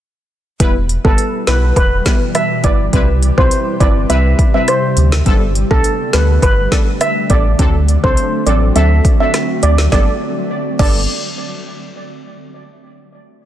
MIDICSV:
0, 0, Header, 1, 6, 480
1, 0, Start_track
1, 0, Key_signature, 1, "major"
1, 0, Tempo, 582524
1, 495, Time_signature, 4, 2, 24, 8
1, 11085, End_track
2, 0, Start_track
2, 0, Title_t, "Steel pan"
2, 0, Program_c, 0, 114
2, 862, Note_on_c, 0, 69, 83
2, 957, Note_off_c, 0, 69, 0
2, 1216, Note_on_c, 0, 71, 77
2, 1322, Note_off_c, 0, 71, 0
2, 1455, Note_on_c, 0, 71, 109
2, 1800, Note_off_c, 0, 71, 0
2, 1936, Note_on_c, 0, 76, 90
2, 2043, Note_off_c, 0, 76, 0
2, 2177, Note_on_c, 0, 74, 84
2, 2283, Note_off_c, 0, 74, 0
2, 2783, Note_on_c, 0, 72, 80
2, 2877, Note_off_c, 0, 72, 0
2, 3135, Note_on_c, 0, 74, 84
2, 3242, Note_off_c, 0, 74, 0
2, 3376, Note_on_c, 0, 76, 89
2, 3482, Note_off_c, 0, 76, 0
2, 3743, Note_on_c, 0, 76, 80
2, 3838, Note_off_c, 0, 76, 0
2, 3857, Note_on_c, 0, 72, 80
2, 4201, Note_off_c, 0, 72, 0
2, 4703, Note_on_c, 0, 69, 86
2, 4797, Note_off_c, 0, 69, 0
2, 5056, Note_on_c, 0, 71, 78
2, 5162, Note_off_c, 0, 71, 0
2, 5297, Note_on_c, 0, 71, 98
2, 5641, Note_off_c, 0, 71, 0
2, 5775, Note_on_c, 0, 76, 91
2, 5882, Note_off_c, 0, 76, 0
2, 6017, Note_on_c, 0, 74, 83
2, 6123, Note_off_c, 0, 74, 0
2, 6622, Note_on_c, 0, 72, 85
2, 6717, Note_off_c, 0, 72, 0
2, 6975, Note_on_c, 0, 74, 78
2, 7082, Note_off_c, 0, 74, 0
2, 7216, Note_on_c, 0, 76, 87
2, 7323, Note_off_c, 0, 76, 0
2, 7583, Note_on_c, 0, 76, 78
2, 7678, Note_off_c, 0, 76, 0
2, 7935, Note_on_c, 0, 74, 83
2, 8042, Note_off_c, 0, 74, 0
2, 8175, Note_on_c, 0, 74, 86
2, 8314, Note_off_c, 0, 74, 0
2, 8894, Note_on_c, 0, 74, 85
2, 9118, Note_off_c, 0, 74, 0
2, 11085, End_track
3, 0, Start_track
3, 0, Title_t, "Synth stab"
3, 0, Program_c, 1, 62
3, 492, Note_on_c, 1, 55, 96
3, 495, Note_on_c, 1, 59, 86
3, 496, Note_on_c, 1, 64, 90
3, 498, Note_on_c, 1, 71, 106
3, 620, Note_off_c, 1, 55, 0
3, 621, Note_off_c, 1, 59, 0
3, 622, Note_off_c, 1, 64, 0
3, 622, Note_off_c, 1, 71, 0
3, 860, Note_on_c, 1, 55, 80
3, 862, Note_on_c, 1, 59, 71
3, 864, Note_on_c, 1, 64, 68
3, 865, Note_on_c, 1, 71, 83
3, 1187, Note_off_c, 1, 55, 0
3, 1188, Note_off_c, 1, 59, 0
3, 1189, Note_off_c, 1, 64, 0
3, 1189, Note_off_c, 1, 71, 0
3, 1213, Note_on_c, 1, 55, 82
3, 1215, Note_on_c, 1, 59, 73
3, 1216, Note_on_c, 1, 64, 73
3, 1218, Note_on_c, 1, 71, 92
3, 1436, Note_off_c, 1, 55, 0
3, 1437, Note_off_c, 1, 59, 0
3, 1438, Note_off_c, 1, 64, 0
3, 1439, Note_off_c, 1, 71, 0
3, 1692, Note_on_c, 1, 55, 79
3, 1694, Note_on_c, 1, 59, 71
3, 1695, Note_on_c, 1, 64, 73
3, 1697, Note_on_c, 1, 71, 88
3, 1820, Note_off_c, 1, 55, 0
3, 1820, Note_off_c, 1, 59, 0
3, 1821, Note_off_c, 1, 64, 0
3, 1822, Note_off_c, 1, 71, 0
3, 2174, Note_on_c, 1, 55, 74
3, 2175, Note_on_c, 1, 59, 71
3, 2177, Note_on_c, 1, 64, 70
3, 2178, Note_on_c, 1, 71, 81
3, 2300, Note_off_c, 1, 55, 0
3, 2301, Note_off_c, 1, 59, 0
3, 2302, Note_off_c, 1, 64, 0
3, 2303, Note_off_c, 1, 71, 0
3, 2414, Note_on_c, 1, 55, 99
3, 2416, Note_on_c, 1, 60, 89
3, 2418, Note_on_c, 1, 64, 89
3, 2420, Note_on_c, 1, 71, 107
3, 2540, Note_off_c, 1, 55, 0
3, 2541, Note_off_c, 1, 60, 0
3, 2542, Note_off_c, 1, 64, 0
3, 2543, Note_off_c, 1, 71, 0
3, 2781, Note_on_c, 1, 55, 82
3, 2782, Note_on_c, 1, 60, 70
3, 2784, Note_on_c, 1, 64, 72
3, 2786, Note_on_c, 1, 71, 86
3, 3107, Note_off_c, 1, 55, 0
3, 3108, Note_off_c, 1, 60, 0
3, 3109, Note_off_c, 1, 64, 0
3, 3110, Note_off_c, 1, 71, 0
3, 3133, Note_on_c, 1, 55, 80
3, 3135, Note_on_c, 1, 60, 73
3, 3137, Note_on_c, 1, 64, 74
3, 3138, Note_on_c, 1, 71, 86
3, 3356, Note_off_c, 1, 55, 0
3, 3357, Note_off_c, 1, 60, 0
3, 3358, Note_off_c, 1, 64, 0
3, 3358, Note_off_c, 1, 71, 0
3, 3373, Note_on_c, 1, 55, 93
3, 3374, Note_on_c, 1, 60, 86
3, 3376, Note_on_c, 1, 64, 85
3, 3377, Note_on_c, 1, 71, 111
3, 3710, Note_off_c, 1, 55, 0
3, 3711, Note_off_c, 1, 60, 0
3, 3712, Note_off_c, 1, 64, 0
3, 3713, Note_off_c, 1, 71, 0
3, 3740, Note_on_c, 1, 55, 77
3, 3742, Note_on_c, 1, 60, 74
3, 3743, Note_on_c, 1, 64, 68
3, 3745, Note_on_c, 1, 71, 85
3, 3853, Note_off_c, 1, 55, 0
3, 3854, Note_off_c, 1, 60, 0
3, 3855, Note_off_c, 1, 64, 0
3, 3855, Note_off_c, 1, 71, 0
3, 4333, Note_on_c, 1, 55, 97
3, 4335, Note_on_c, 1, 59, 91
3, 4337, Note_on_c, 1, 62, 85
3, 4338, Note_on_c, 1, 69, 113
3, 4460, Note_off_c, 1, 55, 0
3, 4461, Note_off_c, 1, 59, 0
3, 4462, Note_off_c, 1, 62, 0
3, 4463, Note_off_c, 1, 69, 0
3, 4701, Note_on_c, 1, 55, 79
3, 4702, Note_on_c, 1, 59, 73
3, 4704, Note_on_c, 1, 62, 73
3, 4705, Note_on_c, 1, 69, 87
3, 5027, Note_off_c, 1, 55, 0
3, 5028, Note_off_c, 1, 59, 0
3, 5029, Note_off_c, 1, 62, 0
3, 5029, Note_off_c, 1, 69, 0
3, 5053, Note_on_c, 1, 55, 81
3, 5055, Note_on_c, 1, 59, 76
3, 5056, Note_on_c, 1, 62, 70
3, 5058, Note_on_c, 1, 69, 88
3, 5276, Note_off_c, 1, 55, 0
3, 5277, Note_off_c, 1, 59, 0
3, 5277, Note_off_c, 1, 62, 0
3, 5278, Note_off_c, 1, 69, 0
3, 5533, Note_on_c, 1, 55, 82
3, 5534, Note_on_c, 1, 59, 72
3, 5536, Note_on_c, 1, 62, 75
3, 5538, Note_on_c, 1, 69, 87
3, 5660, Note_off_c, 1, 55, 0
3, 5661, Note_off_c, 1, 59, 0
3, 5661, Note_off_c, 1, 62, 0
3, 5662, Note_off_c, 1, 69, 0
3, 6013, Note_on_c, 1, 55, 71
3, 6014, Note_on_c, 1, 59, 69
3, 6016, Note_on_c, 1, 62, 70
3, 6018, Note_on_c, 1, 69, 81
3, 6140, Note_off_c, 1, 55, 0
3, 6141, Note_off_c, 1, 59, 0
3, 6142, Note_off_c, 1, 62, 0
3, 6142, Note_off_c, 1, 69, 0
3, 6253, Note_on_c, 1, 54, 94
3, 6255, Note_on_c, 1, 60, 92
3, 6257, Note_on_c, 1, 62, 89
3, 6258, Note_on_c, 1, 69, 108
3, 6380, Note_off_c, 1, 54, 0
3, 6381, Note_off_c, 1, 60, 0
3, 6382, Note_off_c, 1, 62, 0
3, 6382, Note_off_c, 1, 69, 0
3, 6621, Note_on_c, 1, 54, 76
3, 6622, Note_on_c, 1, 60, 72
3, 6625, Note_on_c, 1, 62, 72
3, 6626, Note_on_c, 1, 69, 84
3, 6947, Note_off_c, 1, 54, 0
3, 6948, Note_off_c, 1, 60, 0
3, 6949, Note_off_c, 1, 62, 0
3, 6950, Note_off_c, 1, 69, 0
3, 6974, Note_on_c, 1, 54, 82
3, 6976, Note_on_c, 1, 60, 73
3, 6977, Note_on_c, 1, 62, 73
3, 6979, Note_on_c, 1, 69, 88
3, 7197, Note_off_c, 1, 54, 0
3, 7197, Note_off_c, 1, 60, 0
3, 7198, Note_off_c, 1, 62, 0
3, 7199, Note_off_c, 1, 69, 0
3, 7212, Note_on_c, 1, 54, 97
3, 7214, Note_on_c, 1, 60, 89
3, 7216, Note_on_c, 1, 62, 87
3, 7217, Note_on_c, 1, 69, 105
3, 7550, Note_off_c, 1, 54, 0
3, 7551, Note_off_c, 1, 60, 0
3, 7552, Note_off_c, 1, 62, 0
3, 7553, Note_off_c, 1, 69, 0
3, 7580, Note_on_c, 1, 54, 78
3, 7581, Note_on_c, 1, 60, 70
3, 7583, Note_on_c, 1, 62, 69
3, 7585, Note_on_c, 1, 69, 83
3, 7693, Note_off_c, 1, 54, 0
3, 7694, Note_off_c, 1, 60, 0
3, 7694, Note_off_c, 1, 62, 0
3, 7695, Note_off_c, 1, 69, 0
3, 8171, Note_on_c, 1, 55, 93
3, 8174, Note_on_c, 1, 59, 84
3, 8177, Note_on_c, 1, 62, 85
3, 8179, Note_on_c, 1, 69, 100
3, 8312, Note_off_c, 1, 55, 0
3, 8314, Note_off_c, 1, 59, 0
3, 8315, Note_off_c, 1, 62, 0
3, 8316, Note_off_c, 1, 69, 0
3, 8891, Note_on_c, 1, 55, 88
3, 8894, Note_on_c, 1, 59, 81
3, 8896, Note_on_c, 1, 62, 79
3, 8899, Note_on_c, 1, 69, 99
3, 9074, Note_off_c, 1, 55, 0
3, 9075, Note_off_c, 1, 59, 0
3, 9077, Note_off_c, 1, 62, 0
3, 9079, Note_off_c, 1, 69, 0
3, 11085, End_track
4, 0, Start_track
4, 0, Title_t, "Ambient pad"
4, 0, Program_c, 2, 92
4, 493, Note_on_c, 2, 47, 80
4, 493, Note_on_c, 2, 55, 78
4, 493, Note_on_c, 2, 64, 76
4, 494, Note_on_c, 2, 52, 75
4, 494, Note_on_c, 2, 67, 88
4, 2395, Note_off_c, 2, 47, 0
4, 2395, Note_off_c, 2, 52, 0
4, 2395, Note_off_c, 2, 55, 0
4, 2416, Note_on_c, 2, 48, 85
4, 2416, Note_on_c, 2, 55, 76
4, 4301, Note_off_c, 2, 64, 0
4, 4316, Note_off_c, 2, 48, 0
4, 4336, Note_on_c, 2, 50, 84
4, 4336, Note_on_c, 2, 57, 75
4, 6221, Note_off_c, 2, 67, 0
4, 6223, Note_off_c, 2, 55, 0
4, 6257, Note_on_c, 2, 54, 75
4, 6257, Note_on_c, 2, 60, 72
4, 6257, Note_on_c, 2, 66, 92
4, 8142, Note_off_c, 2, 50, 0
4, 8143, Note_off_c, 2, 57, 0
4, 8157, Note_off_c, 2, 54, 0
4, 8157, Note_off_c, 2, 60, 0
4, 8157, Note_off_c, 2, 66, 0
4, 11085, End_track
5, 0, Start_track
5, 0, Title_t, "Sub bass"
5, 0, Program_c, 3, 38
5, 495, Note_on_c, 3, 28, 107
5, 807, Note_off_c, 3, 28, 0
5, 863, Note_on_c, 3, 31, 94
5, 958, Note_off_c, 3, 31, 0
5, 1215, Note_on_c, 3, 35, 93
5, 1419, Note_off_c, 3, 35, 0
5, 1453, Note_on_c, 3, 28, 105
5, 1657, Note_off_c, 3, 28, 0
5, 2174, Note_on_c, 3, 31, 95
5, 2378, Note_off_c, 3, 31, 0
5, 2415, Note_on_c, 3, 36, 103
5, 2727, Note_off_c, 3, 36, 0
5, 2783, Note_on_c, 3, 35, 92
5, 2879, Note_off_c, 3, 35, 0
5, 3135, Note_on_c, 3, 31, 104
5, 3339, Note_off_c, 3, 31, 0
5, 3375, Note_on_c, 3, 36, 109
5, 3579, Note_off_c, 3, 36, 0
5, 4094, Note_on_c, 3, 38, 92
5, 4298, Note_off_c, 3, 38, 0
5, 4335, Note_on_c, 3, 31, 109
5, 4647, Note_off_c, 3, 31, 0
5, 4704, Note_on_c, 3, 35, 87
5, 4799, Note_off_c, 3, 35, 0
5, 5056, Note_on_c, 3, 38, 95
5, 5259, Note_off_c, 3, 38, 0
5, 5293, Note_on_c, 3, 31, 108
5, 5498, Note_off_c, 3, 31, 0
5, 6015, Note_on_c, 3, 33, 81
5, 6219, Note_off_c, 3, 33, 0
5, 6255, Note_on_c, 3, 38, 107
5, 6567, Note_off_c, 3, 38, 0
5, 6623, Note_on_c, 3, 36, 98
5, 6719, Note_off_c, 3, 36, 0
5, 6975, Note_on_c, 3, 33, 93
5, 7179, Note_off_c, 3, 33, 0
5, 7216, Note_on_c, 3, 38, 112
5, 7419, Note_off_c, 3, 38, 0
5, 7935, Note_on_c, 3, 38, 92
5, 8139, Note_off_c, 3, 38, 0
5, 8174, Note_on_c, 3, 31, 107
5, 8314, Note_off_c, 3, 31, 0
5, 8894, Note_on_c, 3, 31, 100
5, 9118, Note_off_c, 3, 31, 0
5, 11085, End_track
6, 0, Start_track
6, 0, Title_t, "Drums"
6, 495, Note_on_c, 9, 36, 112
6, 495, Note_on_c, 9, 42, 69
6, 577, Note_off_c, 9, 36, 0
6, 577, Note_off_c, 9, 42, 0
6, 737, Note_on_c, 9, 42, 48
6, 819, Note_off_c, 9, 42, 0
6, 863, Note_on_c, 9, 36, 95
6, 945, Note_off_c, 9, 36, 0
6, 973, Note_on_c, 9, 42, 81
6, 1056, Note_off_c, 9, 42, 0
6, 1214, Note_on_c, 9, 38, 117
6, 1216, Note_on_c, 9, 42, 57
6, 1296, Note_off_c, 9, 38, 0
6, 1298, Note_off_c, 9, 42, 0
6, 1453, Note_on_c, 9, 36, 94
6, 1455, Note_on_c, 9, 42, 68
6, 1535, Note_off_c, 9, 36, 0
6, 1537, Note_off_c, 9, 42, 0
6, 1695, Note_on_c, 9, 36, 92
6, 1696, Note_on_c, 9, 38, 116
6, 1697, Note_on_c, 9, 42, 58
6, 1777, Note_off_c, 9, 36, 0
6, 1778, Note_off_c, 9, 38, 0
6, 1779, Note_off_c, 9, 42, 0
6, 1935, Note_on_c, 9, 42, 89
6, 1937, Note_on_c, 9, 37, 98
6, 2018, Note_off_c, 9, 42, 0
6, 2019, Note_off_c, 9, 37, 0
6, 2173, Note_on_c, 9, 42, 61
6, 2175, Note_on_c, 9, 36, 96
6, 2255, Note_off_c, 9, 42, 0
6, 2257, Note_off_c, 9, 36, 0
6, 2415, Note_on_c, 9, 36, 114
6, 2415, Note_on_c, 9, 42, 70
6, 2498, Note_off_c, 9, 36, 0
6, 2498, Note_off_c, 9, 42, 0
6, 2658, Note_on_c, 9, 42, 48
6, 2740, Note_off_c, 9, 42, 0
6, 2783, Note_on_c, 9, 36, 98
6, 2866, Note_off_c, 9, 36, 0
6, 2894, Note_on_c, 9, 42, 82
6, 2977, Note_off_c, 9, 42, 0
6, 3135, Note_on_c, 9, 36, 106
6, 3137, Note_on_c, 9, 42, 53
6, 3217, Note_off_c, 9, 36, 0
6, 3220, Note_off_c, 9, 42, 0
6, 3377, Note_on_c, 9, 42, 66
6, 3459, Note_off_c, 9, 42, 0
6, 3615, Note_on_c, 9, 36, 96
6, 3617, Note_on_c, 9, 42, 58
6, 3698, Note_off_c, 9, 36, 0
6, 3700, Note_off_c, 9, 42, 0
6, 3855, Note_on_c, 9, 42, 85
6, 3857, Note_on_c, 9, 37, 97
6, 3938, Note_off_c, 9, 42, 0
6, 3939, Note_off_c, 9, 37, 0
6, 4093, Note_on_c, 9, 42, 62
6, 4176, Note_off_c, 9, 42, 0
6, 4222, Note_on_c, 9, 38, 121
6, 4304, Note_off_c, 9, 38, 0
6, 4335, Note_on_c, 9, 36, 112
6, 4335, Note_on_c, 9, 42, 70
6, 4417, Note_off_c, 9, 42, 0
6, 4418, Note_off_c, 9, 36, 0
6, 4577, Note_on_c, 9, 42, 48
6, 4659, Note_off_c, 9, 42, 0
6, 4703, Note_on_c, 9, 36, 97
6, 4786, Note_off_c, 9, 36, 0
6, 4814, Note_on_c, 9, 42, 79
6, 4896, Note_off_c, 9, 42, 0
6, 5054, Note_on_c, 9, 38, 109
6, 5055, Note_on_c, 9, 42, 55
6, 5136, Note_off_c, 9, 38, 0
6, 5138, Note_off_c, 9, 42, 0
6, 5293, Note_on_c, 9, 36, 93
6, 5295, Note_on_c, 9, 42, 66
6, 5375, Note_off_c, 9, 36, 0
6, 5378, Note_off_c, 9, 42, 0
6, 5535, Note_on_c, 9, 36, 97
6, 5536, Note_on_c, 9, 38, 113
6, 5537, Note_on_c, 9, 42, 57
6, 5618, Note_off_c, 9, 36, 0
6, 5619, Note_off_c, 9, 38, 0
6, 5619, Note_off_c, 9, 42, 0
6, 5775, Note_on_c, 9, 42, 85
6, 5776, Note_on_c, 9, 37, 96
6, 5857, Note_off_c, 9, 42, 0
6, 5858, Note_off_c, 9, 37, 0
6, 6013, Note_on_c, 9, 42, 63
6, 6015, Note_on_c, 9, 36, 98
6, 6096, Note_off_c, 9, 42, 0
6, 6097, Note_off_c, 9, 36, 0
6, 6255, Note_on_c, 9, 36, 108
6, 6255, Note_on_c, 9, 42, 71
6, 6337, Note_off_c, 9, 42, 0
6, 6338, Note_off_c, 9, 36, 0
6, 6497, Note_on_c, 9, 42, 46
6, 6580, Note_off_c, 9, 42, 0
6, 6623, Note_on_c, 9, 36, 100
6, 6706, Note_off_c, 9, 36, 0
6, 6734, Note_on_c, 9, 42, 83
6, 6816, Note_off_c, 9, 42, 0
6, 6976, Note_on_c, 9, 42, 58
6, 7059, Note_off_c, 9, 42, 0
6, 7216, Note_on_c, 9, 42, 66
6, 7298, Note_off_c, 9, 42, 0
6, 7455, Note_on_c, 9, 36, 96
6, 7456, Note_on_c, 9, 42, 56
6, 7537, Note_off_c, 9, 36, 0
6, 7539, Note_off_c, 9, 42, 0
6, 7695, Note_on_c, 9, 42, 85
6, 7696, Note_on_c, 9, 37, 91
6, 7696, Note_on_c, 9, 38, 67
6, 7777, Note_off_c, 9, 42, 0
6, 7778, Note_off_c, 9, 37, 0
6, 7778, Note_off_c, 9, 38, 0
6, 7933, Note_on_c, 9, 42, 64
6, 8016, Note_off_c, 9, 42, 0
6, 8062, Note_on_c, 9, 38, 120
6, 8144, Note_off_c, 9, 38, 0
6, 8175, Note_on_c, 9, 36, 105
6, 8175, Note_on_c, 9, 38, 83
6, 8257, Note_off_c, 9, 36, 0
6, 8257, Note_off_c, 9, 38, 0
6, 8894, Note_on_c, 9, 36, 112
6, 8894, Note_on_c, 9, 49, 93
6, 8976, Note_off_c, 9, 49, 0
6, 8977, Note_off_c, 9, 36, 0
6, 11085, End_track
0, 0, End_of_file